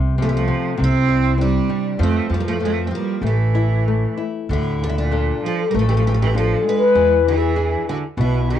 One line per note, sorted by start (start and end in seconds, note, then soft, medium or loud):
0.00 0.48 C2 medium
0.00 0.17 C3 soft
0.18 0.46 C3 medium
0.18 0.27 F3 medium
0.22 0.28 A3 medium
0.28 0.33 E3 medium
0.28 0.35 G3 medium
0.35 0.77 F3 medium
0.35 0.82 A3 medium
0.48 0.76 C3 medium
0.77 1.57 C2 medium
0.77 1.95 C3 medium
0.77 1.36 C4 loud
0.84 1.41 E4 loud
1.08 1.38 G3 medium
1.38 1.97 G3 medium
1.38 1.68 C4 medium
1.38 2.02 D4 medium
1.69 1.99 G3 medium
1.99 2.19 F2 medium
1.99 2.28 F3 medium
1.99 2.28 A3 medium
2.03 2.32 C4 medium
2.30 2.90 F2 medium
2.30 2.59 F3 medium
2.30 2.36 F3 medium
2.34 2.43 G3 medium
2.34 2.39 A3 medium
2.40 2.45 A#3 medium
2.45 2.60 F3 medium
2.45 2.63 A3 medium
2.60 2.90 F3 medium
2.60 2.83 A3 medium
2.65 2.85 C4 medium
2.85 2.91 A3 soft
2.85 2.92 C4 medium
2.91 3.21 F3 medium
2.91 3.21 G3 medium
2.95 3.25 A#3 medium
3.22 4.04 A1 medium
3.22 4.15 E3 medium
3.22 3.87 A3 medium
3.26 4.15 A3 medium
3.55 3.85 E4 soft
3.88 4.17 A3 soft
4.18 4.48 E4 soft
4.49 5.30 D2 medium
4.49 4.79 A2 medium
4.49 5.10 D3 medium
4.49 4.83 E4 medium
4.81 4.86 A#2 medium
4.81 4.89 D4 medium
4.87 4.93 C#3 medium
4.87 4.95 E4 medium
4.95 5.39 A#2 medium
4.95 5.45 D4 medium
5.11 5.61 D4 soft
5.11 5.61 F4 soft
5.11 5.61 A4 soft
5.44 5.66 F3 medium
5.44 5.70 A4 medium
5.68 5.76 G3 medium
5.68 5.78 A#4 medium
5.74 6.53 A1 medium
5.74 6.33 A3 medium
5.79 5.86 F3 medium
5.79 5.87 A4 medium
5.87 5.95 E3 medium
5.87 5.96 G4 medium
5.96 6.04 F3 medium
5.96 6.05 A4 medium
6.06 6.11 E3 medium
6.06 6.13 G4 medium
6.11 6.18 F3 medium
6.11 6.20 A4 medium
6.20 6.34 E3 medium
6.20 6.37 G4 medium
6.34 6.63 F3 medium
6.34 6.83 D4 soft
6.34 6.83 F4 soft
6.34 6.64 A4 medium
6.65 7.21 G#3 medium
6.69 7.28 B4 medium
6.95 7.74 E2 medium
6.95 7.54 E3 medium
7.26 7.82 E3 medium
7.26 7.84 G#4 medium
7.55 8.04 D4 soft
7.55 8.05 E4 soft
7.55 8.05 G#4 medium
7.88 8.01 D3 medium
7.88 7.97 F#4 medium
8.17 8.59 B1 medium
8.17 8.59 B2 medium
8.17 8.45 B2 medium
8.17 8.50 E4 medium
8.49 8.59 E3 medium
8.49 8.59 G#4 medium